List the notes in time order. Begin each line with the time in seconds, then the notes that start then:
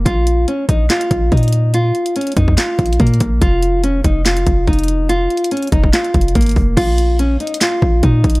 0.05 A#1 F4, kick, closed hi-hat
0.27 closed hi-hat
0.48 C#4, closed hi-hat
0.69 A#1 D#4, kick, closed hi-hat
0.90 F4, snare, clap, closed hi-hat
1.01 closed hi-hat
1.11 A#1, kick, closed hi-hat
1.32 A#2 D#4, kick, closed hi-hat
1.37 closed hi-hat
1.43 closed hi-hat
1.48 closed hi-hat
1.53 closed hi-hat
1.74 F4, closed hi-hat
1.95 closed hi-hat
2.06 closed hi-hat
2.16 C#4, closed hi-hat
2.21 closed hi-hat
2.27 closed hi-hat
2.32 closed hi-hat
2.36 F2 D#4, kick, closed hi-hat
2.48 kick
2.57 F4, snare, clap, closed hi-hat
2.79 A#1, kick, closed hi-hat
2.86 closed hi-hat
2.93 closed hi-hat
3.00 A#2 A#3, kick, closed hi-hat
3.07 closed hi-hat
3.14 closed hi-hat
3.20 A#1, kick, closed hi-hat
3.41 F1 F4, kick, closed hi-hat
3.63 closed hi-hat
3.83 C#4, closed hi-hat
4.04 F1 D#4, kick, closed hi-hat
4.26 F4, snare, clap, closed hi-hat
4.37 closed hi-hat
4.47 F1, kick, closed hi-hat
4.67 F1 D#4, kick, closed hi-hat
4.73 closed hi-hat
4.79 closed hi-hat
4.84 closed hi-hat
4.88 closed hi-hat
5.09 F4, closed hi-hat
5.30 closed hi-hat
5.37 closed hi-hat
5.44 closed hi-hat
5.51 C#4, closed hi-hat
5.57 closed hi-hat
5.62 closed hi-hat
5.67 closed hi-hat
5.72 F1 D#4, kick, closed hi-hat
5.84 kick
5.93 F4, snare, clap, closed hi-hat
6.04 closed hi-hat
6.14 F1, kick, closed hi-hat
6.21 closed hi-hat
6.28 closed hi-hat
6.35 G#1 A#3, kick, closed hi-hat
6.41 closed hi-hat
6.46 closed hi-hat
6.49 closed hi-hat
6.51 closed hi-hat
6.56 F1, kick, open hi-hat
6.77 A#1 F4, kick, closed hi-hat, crash
6.98 closed hi-hat
7.19 C#4, closed hi-hat
7.40 D#4, closed hi-hat
7.47 closed hi-hat
7.54 closed hi-hat
7.61 F4, snare, clap, closed hi-hat
7.82 A#1, kick
8.03 A#2 D#4, kick, closed hi-hat
8.24 A#1, kick, closed hi-hat
8.30 closed hi-hat
8.35 closed hi-hat